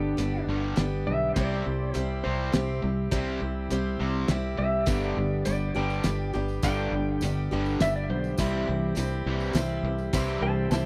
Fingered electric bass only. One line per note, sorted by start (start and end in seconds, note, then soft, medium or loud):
0.00 0.16 G1 medium
0.18 0.45 G1 medium
0.47 0.75 G1 medium
0.78 1.05 G1 medium
1.08 1.34 B1 medium
1.36 1.63 C2 loud
1.67 1.93 C2 medium
1.96 2.23 C2 medium
2.26 2.52 C2 medium
2.54 2.81 C2 medium
2.84 3.10 C2 loud
3.12 3.39 C2 loud
3.42 3.69 C2 medium
3.72 3.98 C2 medium
4.00 4.27 C2 medium
4.29 4.56 C2 medium
4.58 4.86 C2 medium
4.87 5.15 G1 loud
5.17 5.44 G1 medium
5.47 5.74 G1 medium
5.76 6.03 G1 medium
6.05 6.32 G1 medium
6.35 6.62 G1 medium
6.63 6.90 G1 loud
6.91 7.19 G1 medium
7.22 7.49 G1 medium
7.52 7.79 G1 loud
7.80 8.07 G1 loud
8.10 8.37 B1 loud
8.39 8.66 C2 loud
8.69 8.95 C2 medium
8.97 9.24 C2 medium
9.26 9.53 C2 medium
9.54 9.82 C2 loud
9.83 10.11 C2 loud
10.14 10.40 C2 loud
10.41 10.69 C2 medium
10.71 10.86 C2 medium